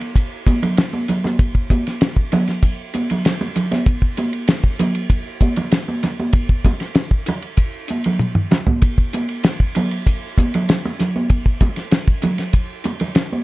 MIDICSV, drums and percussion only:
0, 0, Header, 1, 2, 480
1, 0, Start_track
1, 0, Tempo, 619835
1, 1080, Time_signature, 4, 2, 24, 8
1, 10405, End_track
2, 0, Start_track
2, 0, Title_t, "Drums"
2, 9, Note_on_c, 9, 51, 52
2, 87, Note_off_c, 9, 51, 0
2, 120, Note_on_c, 9, 36, 65
2, 125, Note_on_c, 9, 44, 71
2, 125, Note_on_c, 9, 51, 66
2, 198, Note_off_c, 9, 36, 0
2, 203, Note_off_c, 9, 44, 0
2, 203, Note_off_c, 9, 51, 0
2, 361, Note_on_c, 9, 36, 68
2, 365, Note_on_c, 9, 63, 68
2, 367, Note_on_c, 9, 44, 77
2, 367, Note_on_c, 9, 51, 60
2, 438, Note_off_c, 9, 36, 0
2, 442, Note_off_c, 9, 63, 0
2, 444, Note_off_c, 9, 44, 0
2, 444, Note_off_c, 9, 51, 0
2, 485, Note_on_c, 9, 64, 58
2, 487, Note_on_c, 9, 51, 57
2, 562, Note_off_c, 9, 64, 0
2, 564, Note_off_c, 9, 51, 0
2, 599, Note_on_c, 9, 44, 78
2, 599, Note_on_c, 9, 51, 69
2, 607, Note_on_c, 9, 38, 101
2, 676, Note_off_c, 9, 44, 0
2, 676, Note_off_c, 9, 51, 0
2, 684, Note_off_c, 9, 38, 0
2, 722, Note_on_c, 9, 63, 62
2, 799, Note_off_c, 9, 63, 0
2, 838, Note_on_c, 9, 44, 76
2, 838, Note_on_c, 9, 51, 53
2, 844, Note_on_c, 9, 64, 58
2, 916, Note_off_c, 9, 44, 0
2, 916, Note_off_c, 9, 51, 0
2, 922, Note_off_c, 9, 64, 0
2, 962, Note_on_c, 9, 63, 75
2, 970, Note_on_c, 9, 38, 30
2, 1040, Note_off_c, 9, 63, 0
2, 1048, Note_off_c, 9, 38, 0
2, 1078, Note_on_c, 9, 36, 101
2, 1080, Note_on_c, 9, 44, 69
2, 1080, Note_on_c, 9, 51, 65
2, 1156, Note_off_c, 9, 36, 0
2, 1157, Note_off_c, 9, 44, 0
2, 1157, Note_off_c, 9, 51, 0
2, 1199, Note_on_c, 9, 36, 68
2, 1277, Note_off_c, 9, 36, 0
2, 1318, Note_on_c, 9, 36, 68
2, 1321, Note_on_c, 9, 63, 65
2, 1322, Note_on_c, 9, 44, 84
2, 1322, Note_on_c, 9, 51, 57
2, 1396, Note_off_c, 9, 36, 0
2, 1399, Note_off_c, 9, 44, 0
2, 1399, Note_off_c, 9, 51, 0
2, 1399, Note_off_c, 9, 63, 0
2, 1445, Note_on_c, 9, 51, 57
2, 1453, Note_on_c, 9, 38, 32
2, 1522, Note_off_c, 9, 51, 0
2, 1530, Note_off_c, 9, 38, 0
2, 1555, Note_on_c, 9, 44, 73
2, 1555, Note_on_c, 9, 51, 72
2, 1563, Note_on_c, 9, 38, 102
2, 1633, Note_off_c, 9, 44, 0
2, 1633, Note_off_c, 9, 51, 0
2, 1640, Note_off_c, 9, 38, 0
2, 1676, Note_on_c, 9, 36, 65
2, 1754, Note_off_c, 9, 36, 0
2, 1795, Note_on_c, 9, 44, 83
2, 1795, Note_on_c, 9, 51, 60
2, 1803, Note_on_c, 9, 63, 65
2, 1803, Note_on_c, 9, 64, 72
2, 1872, Note_off_c, 9, 44, 0
2, 1872, Note_off_c, 9, 51, 0
2, 1881, Note_off_c, 9, 63, 0
2, 1881, Note_off_c, 9, 64, 0
2, 1916, Note_on_c, 9, 51, 57
2, 1924, Note_on_c, 9, 38, 27
2, 1994, Note_off_c, 9, 51, 0
2, 2001, Note_off_c, 9, 38, 0
2, 2034, Note_on_c, 9, 44, 76
2, 2034, Note_on_c, 9, 51, 69
2, 2035, Note_on_c, 9, 36, 68
2, 2111, Note_off_c, 9, 44, 0
2, 2111, Note_off_c, 9, 51, 0
2, 2112, Note_off_c, 9, 36, 0
2, 2274, Note_on_c, 9, 44, 75
2, 2274, Note_on_c, 9, 51, 60
2, 2283, Note_on_c, 9, 63, 65
2, 2351, Note_off_c, 9, 44, 0
2, 2351, Note_off_c, 9, 51, 0
2, 2360, Note_off_c, 9, 63, 0
2, 2399, Note_on_c, 9, 51, 65
2, 2409, Note_on_c, 9, 64, 54
2, 2476, Note_off_c, 9, 51, 0
2, 2486, Note_off_c, 9, 64, 0
2, 2516, Note_on_c, 9, 44, 71
2, 2516, Note_on_c, 9, 51, 73
2, 2524, Note_on_c, 9, 38, 95
2, 2594, Note_off_c, 9, 44, 0
2, 2594, Note_off_c, 9, 51, 0
2, 2602, Note_off_c, 9, 38, 0
2, 2640, Note_on_c, 9, 63, 60
2, 2718, Note_off_c, 9, 63, 0
2, 2754, Note_on_c, 9, 44, 74
2, 2754, Note_on_c, 9, 51, 59
2, 2758, Note_on_c, 9, 64, 54
2, 2831, Note_off_c, 9, 44, 0
2, 2831, Note_off_c, 9, 51, 0
2, 2835, Note_off_c, 9, 64, 0
2, 2877, Note_on_c, 9, 63, 64
2, 2878, Note_on_c, 9, 51, 58
2, 2885, Note_on_c, 9, 38, 28
2, 2954, Note_off_c, 9, 63, 0
2, 2955, Note_off_c, 9, 51, 0
2, 2963, Note_off_c, 9, 38, 0
2, 2992, Note_on_c, 9, 36, 102
2, 2996, Note_on_c, 9, 44, 71
2, 2996, Note_on_c, 9, 51, 69
2, 3070, Note_off_c, 9, 36, 0
2, 3074, Note_off_c, 9, 44, 0
2, 3074, Note_off_c, 9, 51, 0
2, 3113, Note_on_c, 9, 36, 63
2, 3190, Note_off_c, 9, 36, 0
2, 3231, Note_on_c, 9, 44, 91
2, 3231, Note_on_c, 9, 51, 69
2, 3239, Note_on_c, 9, 63, 68
2, 3309, Note_off_c, 9, 44, 0
2, 3309, Note_off_c, 9, 51, 0
2, 3317, Note_off_c, 9, 63, 0
2, 3352, Note_on_c, 9, 51, 58
2, 3430, Note_off_c, 9, 51, 0
2, 3466, Note_on_c, 9, 44, 75
2, 3466, Note_on_c, 9, 51, 82
2, 3474, Note_on_c, 9, 38, 101
2, 3544, Note_off_c, 9, 44, 0
2, 3544, Note_off_c, 9, 51, 0
2, 3552, Note_off_c, 9, 38, 0
2, 3591, Note_on_c, 9, 36, 64
2, 3668, Note_off_c, 9, 36, 0
2, 3710, Note_on_c, 9, 44, 84
2, 3710, Note_on_c, 9, 51, 65
2, 3715, Note_on_c, 9, 63, 64
2, 3715, Note_on_c, 9, 64, 64
2, 3788, Note_off_c, 9, 44, 0
2, 3788, Note_off_c, 9, 51, 0
2, 3792, Note_off_c, 9, 63, 0
2, 3792, Note_off_c, 9, 64, 0
2, 3831, Note_on_c, 9, 51, 57
2, 3908, Note_off_c, 9, 51, 0
2, 3948, Note_on_c, 9, 36, 72
2, 3950, Note_on_c, 9, 44, 73
2, 3950, Note_on_c, 9, 51, 74
2, 4025, Note_off_c, 9, 36, 0
2, 4027, Note_off_c, 9, 44, 0
2, 4027, Note_off_c, 9, 51, 0
2, 4186, Note_on_c, 9, 44, 81
2, 4186, Note_on_c, 9, 51, 57
2, 4188, Note_on_c, 9, 36, 64
2, 4195, Note_on_c, 9, 63, 61
2, 4264, Note_off_c, 9, 44, 0
2, 4264, Note_off_c, 9, 51, 0
2, 4265, Note_off_c, 9, 36, 0
2, 4273, Note_off_c, 9, 63, 0
2, 4308, Note_on_c, 9, 51, 58
2, 4315, Note_on_c, 9, 64, 57
2, 4385, Note_off_c, 9, 51, 0
2, 4393, Note_off_c, 9, 64, 0
2, 4426, Note_on_c, 9, 44, 79
2, 4426, Note_on_c, 9, 51, 69
2, 4434, Note_on_c, 9, 38, 95
2, 4503, Note_off_c, 9, 44, 0
2, 4503, Note_off_c, 9, 51, 0
2, 4511, Note_off_c, 9, 38, 0
2, 4556, Note_on_c, 9, 63, 57
2, 4633, Note_off_c, 9, 63, 0
2, 4668, Note_on_c, 9, 44, 82
2, 4668, Note_on_c, 9, 51, 49
2, 4673, Note_on_c, 9, 64, 55
2, 4676, Note_on_c, 9, 38, 29
2, 4746, Note_off_c, 9, 44, 0
2, 4746, Note_off_c, 9, 51, 0
2, 4751, Note_off_c, 9, 64, 0
2, 4753, Note_off_c, 9, 38, 0
2, 4798, Note_on_c, 9, 63, 62
2, 4875, Note_off_c, 9, 63, 0
2, 4900, Note_on_c, 9, 44, 71
2, 4900, Note_on_c, 9, 51, 72
2, 4905, Note_on_c, 9, 36, 97
2, 4977, Note_off_c, 9, 44, 0
2, 4977, Note_off_c, 9, 51, 0
2, 4983, Note_off_c, 9, 36, 0
2, 5028, Note_on_c, 9, 36, 74
2, 5105, Note_off_c, 9, 36, 0
2, 5145, Note_on_c, 9, 44, 87
2, 5145, Note_on_c, 9, 51, 59
2, 5147, Note_on_c, 9, 36, 73
2, 5155, Note_on_c, 9, 63, 65
2, 5223, Note_off_c, 9, 44, 0
2, 5223, Note_off_c, 9, 51, 0
2, 5224, Note_off_c, 9, 36, 0
2, 5233, Note_off_c, 9, 63, 0
2, 5265, Note_on_c, 9, 51, 52
2, 5273, Note_on_c, 9, 38, 30
2, 5343, Note_off_c, 9, 51, 0
2, 5350, Note_off_c, 9, 38, 0
2, 5379, Note_on_c, 9, 44, 77
2, 5379, Note_on_c, 9, 51, 64
2, 5387, Note_on_c, 9, 38, 102
2, 5456, Note_off_c, 9, 44, 0
2, 5456, Note_off_c, 9, 51, 0
2, 5464, Note_off_c, 9, 38, 0
2, 5507, Note_on_c, 9, 36, 66
2, 5584, Note_off_c, 9, 36, 0
2, 5623, Note_on_c, 9, 44, 86
2, 5623, Note_on_c, 9, 51, 58
2, 5641, Note_on_c, 9, 64, 68
2, 5700, Note_off_c, 9, 44, 0
2, 5700, Note_off_c, 9, 51, 0
2, 5719, Note_off_c, 9, 64, 0
2, 5749, Note_on_c, 9, 51, 52
2, 5826, Note_off_c, 9, 51, 0
2, 5863, Note_on_c, 9, 44, 72
2, 5863, Note_on_c, 9, 51, 72
2, 5867, Note_on_c, 9, 36, 71
2, 5940, Note_off_c, 9, 44, 0
2, 5940, Note_off_c, 9, 51, 0
2, 5945, Note_off_c, 9, 36, 0
2, 6102, Note_on_c, 9, 44, 82
2, 6102, Note_on_c, 9, 51, 55
2, 6122, Note_on_c, 9, 63, 65
2, 6180, Note_off_c, 9, 44, 0
2, 6180, Note_off_c, 9, 51, 0
2, 6199, Note_off_c, 9, 63, 0
2, 6227, Note_on_c, 9, 51, 61
2, 6241, Note_on_c, 9, 64, 55
2, 6304, Note_off_c, 9, 51, 0
2, 6318, Note_off_c, 9, 64, 0
2, 6346, Note_on_c, 9, 44, 69
2, 6346, Note_on_c, 9, 48, 54
2, 6423, Note_off_c, 9, 44, 0
2, 6423, Note_off_c, 9, 48, 0
2, 6467, Note_on_c, 9, 47, 59
2, 6544, Note_off_c, 9, 47, 0
2, 6589, Note_on_c, 9, 44, 73
2, 6594, Note_on_c, 9, 64, 66
2, 6597, Note_on_c, 9, 38, 74
2, 6667, Note_off_c, 9, 44, 0
2, 6671, Note_off_c, 9, 64, 0
2, 6674, Note_off_c, 9, 38, 0
2, 6711, Note_on_c, 9, 43, 77
2, 6715, Note_on_c, 9, 63, 61
2, 6789, Note_off_c, 9, 43, 0
2, 6793, Note_off_c, 9, 63, 0
2, 6828, Note_on_c, 9, 44, 74
2, 6828, Note_on_c, 9, 51, 70
2, 6832, Note_on_c, 9, 36, 92
2, 6905, Note_off_c, 9, 44, 0
2, 6905, Note_off_c, 9, 51, 0
2, 6910, Note_off_c, 9, 36, 0
2, 6954, Note_on_c, 9, 36, 65
2, 7031, Note_off_c, 9, 36, 0
2, 7072, Note_on_c, 9, 44, 87
2, 7072, Note_on_c, 9, 51, 66
2, 7080, Note_on_c, 9, 63, 63
2, 7149, Note_off_c, 9, 44, 0
2, 7149, Note_off_c, 9, 51, 0
2, 7158, Note_off_c, 9, 63, 0
2, 7191, Note_on_c, 9, 51, 57
2, 7269, Note_off_c, 9, 51, 0
2, 7307, Note_on_c, 9, 44, 80
2, 7307, Note_on_c, 9, 51, 81
2, 7314, Note_on_c, 9, 38, 107
2, 7384, Note_off_c, 9, 44, 0
2, 7384, Note_off_c, 9, 51, 0
2, 7392, Note_off_c, 9, 38, 0
2, 7434, Note_on_c, 9, 36, 59
2, 7512, Note_off_c, 9, 36, 0
2, 7550, Note_on_c, 9, 44, 93
2, 7550, Note_on_c, 9, 51, 72
2, 7562, Note_on_c, 9, 63, 61
2, 7562, Note_on_c, 9, 64, 59
2, 7627, Note_off_c, 9, 44, 0
2, 7627, Note_off_c, 9, 51, 0
2, 7639, Note_off_c, 9, 63, 0
2, 7639, Note_off_c, 9, 64, 0
2, 7676, Note_on_c, 9, 51, 57
2, 7754, Note_off_c, 9, 51, 0
2, 7795, Note_on_c, 9, 36, 72
2, 7797, Note_on_c, 9, 44, 82
2, 7797, Note_on_c, 9, 51, 73
2, 7872, Note_off_c, 9, 36, 0
2, 7874, Note_off_c, 9, 44, 0
2, 7874, Note_off_c, 9, 51, 0
2, 8035, Note_on_c, 9, 36, 63
2, 8040, Note_on_c, 9, 44, 80
2, 8040, Note_on_c, 9, 51, 58
2, 8041, Note_on_c, 9, 63, 63
2, 8113, Note_off_c, 9, 36, 0
2, 8118, Note_off_c, 9, 44, 0
2, 8118, Note_off_c, 9, 51, 0
2, 8118, Note_off_c, 9, 63, 0
2, 8162, Note_on_c, 9, 51, 64
2, 8168, Note_on_c, 9, 64, 56
2, 8239, Note_off_c, 9, 51, 0
2, 8245, Note_off_c, 9, 64, 0
2, 8276, Note_on_c, 9, 44, 73
2, 8276, Note_on_c, 9, 51, 78
2, 8284, Note_on_c, 9, 38, 103
2, 8354, Note_off_c, 9, 44, 0
2, 8354, Note_off_c, 9, 51, 0
2, 8362, Note_off_c, 9, 38, 0
2, 8406, Note_on_c, 9, 63, 59
2, 8483, Note_off_c, 9, 63, 0
2, 8513, Note_on_c, 9, 44, 75
2, 8513, Note_on_c, 9, 51, 50
2, 8521, Note_on_c, 9, 38, 27
2, 8522, Note_on_c, 9, 64, 52
2, 8590, Note_off_c, 9, 44, 0
2, 8590, Note_off_c, 9, 51, 0
2, 8598, Note_off_c, 9, 38, 0
2, 8600, Note_off_c, 9, 64, 0
2, 8640, Note_on_c, 9, 63, 63
2, 8718, Note_off_c, 9, 63, 0
2, 8747, Note_on_c, 9, 44, 72
2, 8747, Note_on_c, 9, 51, 67
2, 8751, Note_on_c, 9, 36, 87
2, 8825, Note_off_c, 9, 44, 0
2, 8825, Note_off_c, 9, 51, 0
2, 8829, Note_off_c, 9, 36, 0
2, 8873, Note_on_c, 9, 36, 66
2, 8950, Note_off_c, 9, 36, 0
2, 8987, Note_on_c, 9, 44, 85
2, 8987, Note_on_c, 9, 51, 64
2, 8990, Note_on_c, 9, 36, 81
2, 8997, Note_on_c, 9, 63, 61
2, 9065, Note_off_c, 9, 44, 0
2, 9065, Note_off_c, 9, 51, 0
2, 9068, Note_off_c, 9, 36, 0
2, 9075, Note_off_c, 9, 63, 0
2, 9108, Note_on_c, 9, 51, 54
2, 9116, Note_on_c, 9, 38, 33
2, 9185, Note_off_c, 9, 51, 0
2, 9193, Note_off_c, 9, 38, 0
2, 9226, Note_on_c, 9, 44, 79
2, 9226, Note_on_c, 9, 51, 71
2, 9233, Note_on_c, 9, 38, 101
2, 9303, Note_off_c, 9, 44, 0
2, 9303, Note_off_c, 9, 51, 0
2, 9311, Note_off_c, 9, 38, 0
2, 9352, Note_on_c, 9, 36, 69
2, 9429, Note_off_c, 9, 36, 0
2, 9463, Note_on_c, 9, 44, 83
2, 9463, Note_on_c, 9, 51, 56
2, 9475, Note_on_c, 9, 63, 56
2, 9475, Note_on_c, 9, 64, 61
2, 9540, Note_off_c, 9, 44, 0
2, 9540, Note_off_c, 9, 51, 0
2, 9552, Note_off_c, 9, 63, 0
2, 9552, Note_off_c, 9, 64, 0
2, 9588, Note_on_c, 9, 51, 58
2, 9595, Note_on_c, 9, 38, 30
2, 9665, Note_off_c, 9, 51, 0
2, 9673, Note_off_c, 9, 38, 0
2, 9704, Note_on_c, 9, 44, 73
2, 9704, Note_on_c, 9, 51, 64
2, 9709, Note_on_c, 9, 36, 74
2, 9781, Note_off_c, 9, 44, 0
2, 9781, Note_off_c, 9, 51, 0
2, 9786, Note_off_c, 9, 36, 0
2, 9943, Note_on_c, 9, 44, 81
2, 9943, Note_on_c, 9, 51, 55
2, 9954, Note_on_c, 9, 63, 66
2, 10021, Note_off_c, 9, 44, 0
2, 10021, Note_off_c, 9, 51, 0
2, 10032, Note_off_c, 9, 63, 0
2, 10065, Note_on_c, 9, 51, 63
2, 10075, Note_on_c, 9, 64, 53
2, 10142, Note_off_c, 9, 51, 0
2, 10152, Note_off_c, 9, 64, 0
2, 10182, Note_on_c, 9, 44, 74
2, 10182, Note_on_c, 9, 51, 68
2, 10190, Note_on_c, 9, 38, 100
2, 10260, Note_off_c, 9, 44, 0
2, 10260, Note_off_c, 9, 51, 0
2, 10268, Note_off_c, 9, 38, 0
2, 10319, Note_on_c, 9, 63, 59
2, 10396, Note_off_c, 9, 63, 0
2, 10405, End_track
0, 0, End_of_file